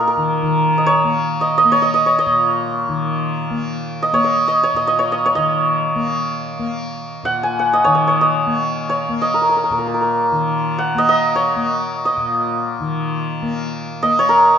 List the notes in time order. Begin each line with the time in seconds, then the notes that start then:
Already playing: A#2 D#3 A#3 D#5
0.00 A#4
0.07 A#4
0.17 D#3
0.42 D#3
0.78 D#5
0.86 C#5
1.04 A#3
1.41 D#5
1.58 D#5
1.65 A#3
1.72 C#5
1.82 D#5
1.94 D#5
2.06 C#5
2.19 D#5
2.26 A#2
2.88 D#3
3.50 A#3
4.03 D#5
4.13 A#3 C#5
4.24 D#5
4.48 D#5
4.63 C#5
4.74 A#2 D#5
4.87 D#5
4.99 C#5
5.12 D#5
5.26 C#5
5.35 D#3 D#5
5.95 A#3
6.59 A#3
7.23 A#2 F#5
7.43 G#5
7.59 F#5
7.73 D#5
7.84 D#3 C#5
7.95 D#5
8.07 C#5
8.21 D#5
8.47 A#3
8.89 C#5
9.09 A#3
9.22 D#5
9.34 A#4
9.42 A#4
9.49 A#4
9.57 A#4
9.64 A#4
9.70 A#2 A#4
9.79 A#4
9.87 A#4
9.94 A#4
10.01 A#4
10.31 D#3
10.78 F#5
10.95 A#3 D#5
11.09 D#5
11.36 C#5
11.56 A#3
12.05 D#5
12.17 A#2
12.80 D#3
13.42 A#3
14.03 A#3 D#5
14.19 C#5
14.29 A#4